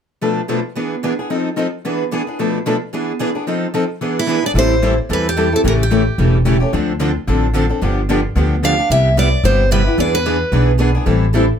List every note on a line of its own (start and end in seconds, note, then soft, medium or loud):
0.22 0.40 B2 medium
0.22 0.40 F3 medium
0.22 0.40 A3 medium
0.22 0.40 D4 medium
0.22 0.40 A4 medium
0.22 0.40 B4 soft
0.49 0.59 B2 medium
0.49 0.59 F3 medium
0.49 0.59 A3 medium
0.49 0.59 D4 medium
0.49 0.59 A4 medium
0.49 0.59 B4 medium
0.76 0.94 E3 soft
0.76 0.94 B3 medium
0.76 0.95 D4 medium
0.76 0.95 G#4 medium
0.76 0.94 B4 medium
1.04 1.12 E3 medium
1.04 1.13 B3 medium
1.04 1.12 D4 medium
1.04 1.13 G#4 medium
1.04 1.12 B4 medium
1.19 1.30 B3 soft
1.19 1.30 D4 soft
1.19 1.30 G#4 soft
1.30 1.48 F3 soft
1.30 1.48 C4 medium
1.30 1.49 D#4 medium
1.30 1.49 A4 medium
1.56 1.66 F3 medium
1.56 1.66 C4 medium
1.56 1.66 D#4 medium
1.56 1.66 A4 medium
1.85 2.03 E3 soft
1.85 2.03 B3 medium
1.85 2.03 D4 medium
1.85 2.03 G#4 medium
1.85 2.03 B4 medium
2.12 2.21 E3 medium
2.12 2.21 B3 medium
2.12 2.21 D4 medium
2.12 2.21 G#4 medium
2.12 2.21 B4 medium
2.27 2.39 B3 soft
2.27 2.39 D4 soft
2.27 2.38 G#4 soft
2.39 2.57 B2 medium
2.39 2.57 F3 medium
2.39 2.57 A3 medium
2.39 2.58 D4 medium
2.39 2.58 A4 medium
2.39 2.58 B4 medium
2.66 2.75 B2 medium
2.66 2.75 F3 medium
2.66 2.75 A3 medium
2.66 2.75 D4 medium
2.66 2.75 A4 medium
2.66 2.75 B4 medium
2.93 3.11 E3 soft
2.93 3.11 B3 medium
2.93 3.12 D4 medium
2.93 3.12 G#4 medium
2.93 3.12 B4 medium
3.20 3.29 E3 medium
3.20 3.29 B3 medium
3.20 3.29 D4 medium
3.20 3.29 G#4 medium
3.20 3.29 B4 medium
3.35 3.47 B3 soft
3.35 3.47 D4 soft
3.35 3.46 G#4 soft
3.47 3.65 F3 medium
3.47 3.66 C4 medium
3.47 3.66 D#4 medium
3.47 3.66 A4 medium
3.74 3.83 F3 medium
3.74 3.83 C4 medium
3.74 3.83 D#4 medium
3.74 3.83 A4 medium
4.01 4.20 E3 medium
4.01 4.20 B3 medium
4.01 4.20 D4 medium
4.01 4.20 G#4 medium
4.01 4.20 B4 medium
4.19 4.46 E4 medium
4.27 4.37 E3 medium
4.27 4.37 B3 medium
4.27 4.37 D4 medium
4.27 4.37 G#4 medium
4.27 4.38 B4 medium
4.42 4.55 B3 soft
4.42 4.55 D4 soft
4.42 4.54 G#4 soft
4.42 4.51 D5 medium
4.54 4.98 A1 medium
4.54 4.74 E3 medium
4.54 4.74 G3 medium
4.54 4.74 C4 medium
4.54 4.74 E4 medium
4.54 4.74 A4 medium
4.59 4.97 C5 medium
4.82 4.93 E3 medium
4.82 4.93 G3 medium
4.82 4.93 C4 medium
4.82 4.93 E4 medium
4.82 4.93 A4 medium
5.09 5.53 E2 medium
5.09 5.28 E3 soft
5.09 5.28 G3 soft
5.09 5.28 C4 medium
5.09 5.28 E4 medium
5.09 5.28 A4 medium
5.13 5.26 B4 medium
5.29 5.52 G4 medium
5.36 5.47 E3 medium
5.36 5.47 G3 medium
5.36 5.47 C4 medium
5.36 5.47 E4 medium
5.36 5.47 A4 medium
5.52 5.64 C4 soft
5.52 5.64 E4 soft
5.52 5.64 A4 soft
5.52 5.60 A4 medium
5.64 6.07 A1 medium
5.64 5.83 C#3 medium
5.64 5.83 E3 medium
5.64 5.83 G3 medium
5.64 5.83 A3 medium
5.64 5.83 C#4 medium
5.64 5.83 E4 medium
5.64 5.83 G4 medium
5.64 5.83 A4 medium
5.64 5.73 A#4 medium
5.83 6.36 G4 medium
5.90 6.01 C#3 medium
5.90 6.01 E3 medium
5.90 6.02 G3 medium
5.90 6.02 A3 medium
5.90 6.01 C#4 medium
5.90 6.02 E4 medium
5.90 6.02 G4 medium
5.90 6.02 A4 medium
6.18 6.62 E1 medium
6.18 6.37 C#3 medium
6.18 6.37 E3 medium
6.18 6.37 G3 medium
6.18 6.37 A3 medium
6.18 6.37 C#4 medium
6.18 6.37 E4 medium
6.18 6.37 G4 medium
6.18 6.37 A4 medium
6.45 6.56 C#3 medium
6.45 6.56 E3 medium
6.45 6.56 G3 medium
6.45 6.56 A3 medium
6.45 6.56 C#4 medium
6.45 6.56 E4 medium
6.45 6.56 G4 medium
6.45 6.57 A4 medium
6.60 6.73 A3 soft
6.60 6.72 C#4 soft
6.60 6.72 G4 soft
6.73 7.16 D2 medium
6.73 6.91 D3 medium
6.73 6.91 F3 medium
6.73 6.91 C4 medium
6.73 6.91 D4 medium
6.73 6.92 A4 medium
6.99 7.10 D3 medium
6.99 7.10 F3 medium
6.99 7.10 C4 medium
6.99 7.10 D4 medium
6.99 7.10 A4 medium
7.27 7.71 A1 medium
7.27 7.46 D3 medium
7.27 7.46 F3 medium
7.27 7.46 C4 medium
7.27 7.46 D4 medium
7.27 7.46 A4 medium
7.53 7.64 D3 medium
7.53 7.64 F3 medium
7.53 7.65 C4 medium
7.53 7.65 D4 medium
7.53 7.65 A4 medium
7.69 7.81 C4 soft
7.69 7.81 D4 soft
7.69 7.81 A4 soft
7.82 8.25 G1 medium
7.82 8.00 D3 medium
7.82 8.00 F3 medium
7.82 8.00 B3 medium
7.82 8.01 D4 medium
7.82 8.01 G4 medium
8.09 8.19 D3 medium
8.09 8.19 F3 medium
8.09 8.19 B3 medium
8.09 8.19 D4 medium
8.09 8.19 G4 medium
8.35 8.79 D2 medium
8.35 8.54 D3 medium
8.35 8.54 F3 medium
8.35 8.54 B3 medium
8.35 8.54 D4 medium
8.35 8.54 G4 medium
8.63 8.73 D3 medium
8.63 8.73 F3 medium
8.63 8.73 B3 medium
8.63 8.73 D4 medium
8.63 8.73 G4 medium
8.63 8.89 F5 medium
8.78 8.90 B3 soft
8.78 8.90 D4 soft
8.78 8.89 G4 soft
8.90 9.33 C2 medium
8.90 9.09 C3 medium
8.90 9.09 G3 medium
8.90 9.09 B3 medium
8.90 9.09 E4 medium
8.90 9.09 G4 medium
8.90 9.16 E5 medium
9.17 9.27 C3 medium
9.17 9.27 G3 medium
9.17 9.28 B3 medium
9.17 9.28 E4 medium
9.17 9.28 G4 medium
9.17 9.43 D5 medium
9.44 9.87 G1 medium
9.44 9.63 C3 medium
9.44 9.63 G3 medium
9.44 9.63 B3 medium
9.44 9.63 E4 medium
9.44 9.63 G4 medium
9.44 9.70 C5 medium
9.71 9.81 C3 medium
9.71 9.82 G3 medium
9.71 9.82 B3 medium
9.71 9.82 E4 medium
9.71 9.82 G4 medium
9.71 9.97 B4 medium
9.86 9.97 B3 soft
9.86 9.98 E4 soft
9.86 9.98 G4 soft
9.97 10.42 E2 medium
9.97 10.16 E3 medium
9.97 10.17 B3 medium
9.97 10.17 D4 medium
9.97 10.17 G#4 medium
9.97 10.17 B4 medium
9.97 10.14 D5 medium
10.15 10.65 B4 medium
10.26 10.36 E3 medium
10.26 10.36 B3 medium
10.26 10.36 D4 medium
10.26 10.36 G#4 medium
10.26 10.36 B4 medium
10.52 10.96 B1 medium
10.52 10.71 E3 medium
10.52 10.71 B3 medium
10.52 10.71 D4 medium
10.52 10.72 G#4 medium
10.52 10.71 B4 medium
10.79 10.90 E3 medium
10.79 10.90 B3 medium
10.79 10.90 D4 medium
10.79 10.90 G#4 medium
10.79 10.90 B4 medium
10.95 11.06 B3 soft
10.95 11.06 D4 soft
10.95 11.06 G#4 medium
11.06 11.50 A1 medium
11.06 11.25 E3 medium
11.06 11.25 G3 medium
11.06 11.25 C4 medium
11.06 11.25 E4 medium
11.06 11.25 A4 medium
11.34 11.45 E3 medium
11.34 11.45 G3 medium
11.34 11.45 C4 medium
11.34 11.45 E4 medium
11.34 11.45 A4 medium